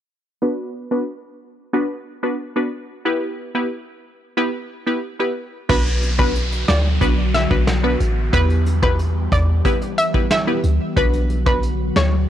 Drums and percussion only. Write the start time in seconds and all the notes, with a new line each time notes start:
5.70 kick, crash
5.86 closed hi-hat
6.02 closed hi-hat
6.19 kick
6.35 closed hi-hat
6.52 closed hi-hat
6.68 snare, closed hi-hat
7.01 kick, closed hi-hat
7.34 snare, closed hi-hat
7.51 kick
7.67 snare, closed hi-hat
8.00 closed hi-hat
8.33 kick, closed hi-hat
8.50 closed hi-hat
8.66 closed hi-hat
8.83 kick
8.99 closed hi-hat
9.32 kick, closed hi-hat
9.65 kick, closed hi-hat
9.81 closed hi-hat
9.98 closed hi-hat
10.14 kick
10.31 snare, closed hi-hat
10.64 closed hi-hat
10.97 kick, closed hi-hat
11.13 closed hi-hat
11.30 closed hi-hat
11.46 kick
11.63 closed hi-hat
11.96 snare, closed hi-hat